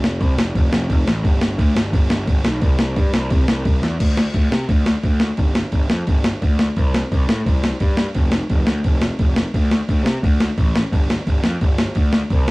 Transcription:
Already playing: F1
0.04 snare
0.21 C2, kick, crash
0.36 F1, snare
0.55 F1, kick, crash
0.71 F1, snare
0.90 F1, kick, crash
1.06 A1, snare
1.24 G1, kick, crash
1.41 snare
1.58 D2, kick, crash
1.75 G1, snare
1.93 G1, kick, crash
2.10 G1, snare
2.27 G1, kick, crash
2.44 B1, snare
2.62 C2, kick, crash
2.79 snare
2.96 G2, kick, crash
3.13 C2, snare
3.30 C2, kick, crash
3.48 C2, snare
3.65 C2, kick, crash
3.82 E2, snare
4.00 D2, kick, crash
4.17 snare
4.34 D2, kick, crash
4.51 C3, snare
4.69 D2, kick, crash
4.86 snare
5.03 D2, kick, crash
5.20 snare
5.37 G1, kick, crash
5.55 snare
5.72 G1, kick, crash
5.90 F2, snare
6.07 G1, kick, crash
6.24 snare
6.42 D2, kick, crash
6.59 snare
6.76 C2, kick, crash
6.94 snare
7.12 C2, kick, crash
7.29 A2, snare
7.46 C2, kick, crash
7.64 snare
7.80 G2, kick, crash
7.97 snare
8.14 F1, kick, crash
8.32 snare
8.50 F1, kick, crash
8.66 D2, snare
8.84 F1, kick, crash
9.01 snare
9.19 F1, kick, crash
9.36 snare
9.54 D2, kick, crash
9.71 snare
9.89 D2, kick, crash
10.03 C3, snare
10.23 D2, kick, crash
10.40 snare
10.58 A1, kick, crash
10.76 snare
10.92 G1, kick, crash
11.10 snare
11.27 G1, kick, crash
11.43 F2, snare
11.61 G1, kick, crash
11.78 snare
11.95 D2, kick, crash
12.13 snare
12.30 C2, kick, crash

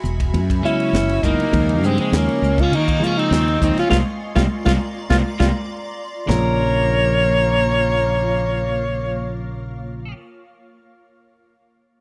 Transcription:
Already playing: F#4 E5 G#5 B5
0.04 E1, hi-hat pedal, low conga
0.20 kick, ride
0.34 F#2, ride, muted conga, high conga
0.50 kick, ride
0.62 C#3 F#3 G#3 B3 C#4 E4, hi-hat pedal
0.80 ride
0.93 F#1, snare, ride, high conga, low conga
1.09 ride
1.22 F#1 C#3 F#3 G#3 A#3 B3 D#4 E4, kick, hi-hat pedal, muted conga
1.40 ride
1.51 D#2 C#3 F3 G#3 A#3 D#4 F4 D#5 C#6, kick, ride, muted conga
1.69 ride
1.83 G2 G#3 C4, hi-hat pedal, muted conga
1.98 G#3 C4, muted fretless electric bass stroke, ride
2.12 D#2 C#4, snare, ride, high conga
2.17 A#3
2.29 ride
2.42 C#2, hi-hat pedal, high conga
2.58 F4, kick, ride
2.63 C#4
2.72 D#3 A#3 D#4, ride
2.88 kick, ride
2.99 C#3 F3 G#3 A#3 F4, hi-hat pedal
3.04 C#4 F4
3.17 C4 D#4, ride
3.31 D#2, snare, ride, high conga
3.48 ride
3.59 D#2 C#3 F3 G#3 A#3 D#4, kick, hi-hat pedal
3.64 C4
3.76 F4, muted fretless electric bass stroke, snare, ride
3.80 C#4
3.89 C2 G3 A#3 C4 F4 D5 A#5 C6, kick, snare, high conga
4.35 C2 G3 A#3 C4 F4, kick, snare, high conga
4.65 C2 G3 A#3 C4 F4, kick, snare, high conga
5.10 C2 G3 A#3 C4 F4, kick, snare, high conga
5.39 C2 G3 A#3 C4 F4, kick, snare, high conga
6.26 A#1 C#3 F3 A#3 F4 A#4 C#5 F5, snare, floor tom, muted conga
6.30 C#4 F4

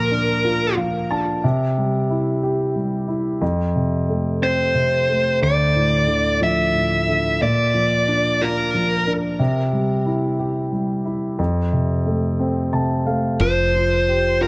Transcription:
Already playing: A#2 F3 A#4
0.11 D4
0.44 F4
0.77 F3 F5
1.11 D4 A5
1.44 C3
1.78 G3
2.10 E4
2.43 G4
2.75 G3
3.08 E4
3.41 F2
3.75 C3
4.09 A3
4.42 C4 C5
4.75 C3
5.09 A3
5.41 D2 D5
5.75 A2
6.07 D3
6.41 F3 E5
6.74 A2
7.07 D3
7.41 A#2 D5
7.74 F3
8.08 D4
8.41 F4 A#4
8.74 F3
9.07 D4
9.39 C3
9.73 G3
10.05 E4
10.39 G4
10.72 G3
11.05 E4
11.39 F2
11.73 C3
12.06 A3
12.40 C4
12.73 C3 A5
13.06 A3 F5
13.40 F1 F3 C5
13.74 F4
14.08 G4
14.41 F4 A#4

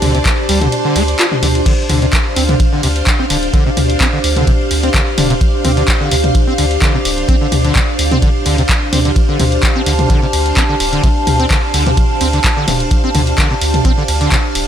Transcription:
Already playing: D4 G4 C5 D5 A5
0.02 D2 D3, open hi-hat, mid tom, ride
0.15 C3, closed hi-hat
0.25 kick, clap, closed hi-hat, ride
0.49 D2 G3, open hi-hat, ride
0.61 D3, closed hi-hat, mid tom
0.72 closed hi-hat, ride
0.85 D3
0.96 D2 A3, open hi-hat, ride
1.08 closed hi-hat
1.19 F4, clap, closed hi-hat, ride
1.32 D4, mid tom
1.43 D2 D3, open hi-hat, mid tom, ride
1.55 closed hi-hat
1.66 D3 F5, kick, closed hi-hat, crash, ride
1.90 D2 D3, open hi-hat, mid tom, ride
2.02 C3, closed hi-hat
2.09 F5, kick, clap, closed hi-hat, ride
2.36 D2 C4, open hi-hat, ride
2.49 D3, closed hi-hat, mid tom
2.60 kick, closed hi-hat, ride
2.72 D3
2.83 D2 C3, open hi-hat, ride
2.96 closed hi-hat
3.07 kick, clap, closed hi-hat, ride
3.19 C4
3.30 D1 D3, open hi-hat, ride
3.43 closed hi-hat
3.54 D3, kick, closed hi-hat, ride
3.66 C3
3.77 D2, open hi-hat, mid tom, ride
3.90 closed hi-hat
4.00 C4, kick, clap, closed hi-hat, ride
4.13 D3
4.24 D2, open hi-hat, ride
4.37 D3, closed hi-hat, mid tom
4.47 C3, kick, closed hi-hat, ride
4.71 D2, open hi-hat, ride
4.83 C4, closed hi-hat
4.94 D3, kick, clap, closed hi-hat, ride
5.18 D1 D3, open hi-hat, mid tom, ride
5.30 C3, closed hi-hat
5.41 kick, closed hi-hat, ride
5.64 D2 C4, open hi-hat, mid tom, ride
5.77 D3, closed hi-hat
5.88 kick, clap, closed hi-hat, ride
6.00 D3
6.11 D2 C3, open hi-hat, ride
6.24 closed hi-hat, mid tom
6.35 kick, closed hi-hat, ride
6.47 C4
6.58 D2 D3, open hi-hat, ride
6.71 closed hi-hat
6.82 D3, kick, clap, closed hi-hat, ride
6.94 C3
7.05 D1, open hi-hat, ride
7.18 closed hi-hat
7.29 C4, kick, closed hi-hat, ride
7.41 D3
7.52 D2, open hi-hat, mid tom, ride
7.65 D3, closed hi-hat
7.75 C3, kick, clap, closed hi-hat, ride
7.99 D2, open hi-hat, ride
8.11 C4, closed hi-hat, mid tom
8.22 D3, kick, closed hi-hat, ride
8.46 D2 D3, open hi-hat, ride
8.58 C3, closed hi-hat
8.69 kick, clap, closed hi-hat, ride
8.93 D2 C4, open hi-hat, mid tom, ride
9.05 D3, closed hi-hat
9.16 F5, kick, closed hi-hat, ride
9.29 D3
9.40 D2 C3, open hi-hat, mid tom, ride
9.52 closed hi-hat
9.59 A5, kick, clap, closed hi-hat, ride
9.76 C4
9.86 D2 D3, open hi-hat, ride
9.99 closed hi-hat, mid tom
10.10 D3, kick, closed hi-hat, ride
10.22 C3
10.33 D2, open hi-hat, ride
10.46 closed hi-hat
10.57 C4, kick, clap, closed hi-hat, ride
10.69 D3
10.80 D1, open hi-hat, ride
10.93 D3, closed hi-hat
11.04 C3, kick, closed hi-hat, ride
11.27 D2, open hi-hat, mid tom, ride
11.40 C4, closed hi-hat
11.50 D3, kick, clap, closed hi-hat, ride
11.74 D2 D3, open hi-hat, ride
11.86 C3, closed hi-hat, mid tom
11.97 kick, closed hi-hat, ride
12.21 D2 C4, open hi-hat, ride
12.33 D3, closed hi-hat
12.44 kick, clap, closed hi-hat, ride
12.57 D3
12.68 D1 C3, open hi-hat, mid tom, ride
12.80 closed hi-hat
12.91 kick, closed hi-hat, ride
13.04 C4
13.15 D2 D3, open hi-hat, mid tom, ride
13.27 closed hi-hat
13.38 D3, kick, clap, closed hi-hat, ride
13.51 C3
13.61 D2, open hi-hat, ride
13.74 closed hi-hat, mid tom
13.85 C4, kick, closed hi-hat, ride
13.98 D3
14.08 D2, open hi-hat, ride
14.21 D3, closed hi-hat
14.32 C3, kick, clap, closed hi-hat, ride
14.55 D1, open hi-hat, ride

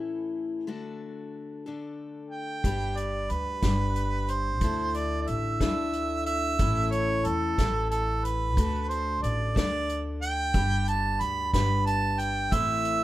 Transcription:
Already playing: A2 E3 A3 C#4 E4 A4
0.67 D3 A3 D4 F#4 A4
1.66 D3 A3 D4 A4
2.30 G5
2.64 G1 G3 D4 G4 B4, kick, closed hi-hat
2.97 D5, closed hi-hat
3.30 D2 B4, closed hi-hat
3.62 G1 G3 D4 G4, kick, snare, closed hi-hat
3.96 closed hi-hat
4.28 C5, closed hi-hat
4.61 D2 D3 A3 D4 E4 A4, kick, closed hi-hat
4.94 D5, closed hi-hat
5.21 D5
5.27 A1 E5, closed hi-hat
5.61 D2 D3 A3 D4 E4 A4 E5, kick, snare, closed hi-hat
5.93 closed hi-hat
6.26 E5, closed hi-hat
6.59 A1 A2 E3 A3 C#4 E4 A4, kick, closed hi-hat
6.92 C#5, closed hi-hat
7.25 E2 A4, closed hi-hat
7.58 A1 A2 E3 A3 C#4 E4 A4, kick, snare, closed hi-hat
7.90 A4, closed hi-hat
8.25 B4, closed hi-hat
8.57 D2 D3 A3 D4 F#4 A4, kick, closed hi-hat
8.89 C5, closed hi-hat
9.23 A1 D5, closed hi-hat
9.55 D2 D3 A3 D4 A4 D5, kick, snare, closed hi-hat
9.89 closed hi-hat
10.22 G5, closed hi-hat
10.54 G1 G3 D4 G4 B4, kick, closed hi-hat
10.88 A5, closed hi-hat
11.21 D2 B5, closed hi-hat
11.53 G1 G3 D4 G4 B4 B5, kick, snare, closed hi-hat
11.86 A5, closed hi-hat
12.19 G5, closed hi-hat
12.51 A1 A2 E3 A3 C4 E4 C5 E5, kick, closed hi-hat
12.85 closed hi-hat

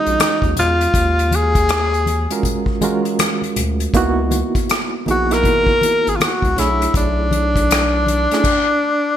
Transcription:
Already playing: G#3 C#4 D#4 F4 F#4 G#4
0.07 A#1, closed hi-hat
0.20 cross-stick, closed hi-hat, muted conga, high conga
0.42 D#2, kick, closed hi-hat, high conga
0.56 E2 F4, closed hi-hat, muted conga, low conga
0.81 closed hi-hat
0.93 D#2, kick, closed hi-hat, muted conga
1.19 closed hi-hat
1.31 closed hi-hat, muted conga, high conga
1.35 G#4
1.55 kick, closed hi-hat
1.68 cross-stick, closed hi-hat, muted conga
1.94 closed hi-hat
2.06 closed hi-hat, muted conga, high conga
2.30 G#3 C#4 F4 F#4 A#4, closed hi-hat
2.43 kick, closed hi-hat, muted conga, low conga
2.66 kick
2.81 G#3 C#4 F4 F#4 A#4, closed hi-hat, high conga
3.05 closed hi-hat
3.19 cross-stick, closed hi-hat, high conga
3.42 closed hi-hat, high conga
3.56 D2, closed hi-hat, low conga
3.80 closed hi-hat
3.94 C#2 A#3 B3 D#4 E4 F#4, kick, closed hi-hat
4.31 closed hi-hat, muted conga, high conga
4.55 kick, closed hi-hat
4.69 cross-stick, closed hi-hat
5.06 A#1 A#3 B3 D#4 E4 G#4, closed hi-hat, muted conga, high conga
5.11 F#4
5.31 A#3 B3 D#4 E4 F#4 A#4, cross-stick, closed hi-hat
5.43 G#1, kick, closed hi-hat, muted conga, low conga
5.67 kick
5.81 closed hi-hat, muted conga, high conga
6.07 G#1 G#4, closed hi-hat
6.16 F4, muted conga, high conga
6.21 F#4, cross-stick, closed hi-hat
6.42 C#2, kick, closed hi-hat, high conga
6.56 B1 A3 D4 E4 G#4 C#5, cross-stick, closed hi-hat, low conga
6.82 closed hi-hat
6.94 B1 D4, kick, closed hi-hat
7.31 closed hi-hat, high conga
7.56 kick, closed hi-hat
7.69 cross-stick, closed hi-hat, muted conga
8.06 closed hi-hat, high conga
8.31 A3 C#4 D4 E4 G#4, cross-stick, closed hi-hat
8.44 kick, crash

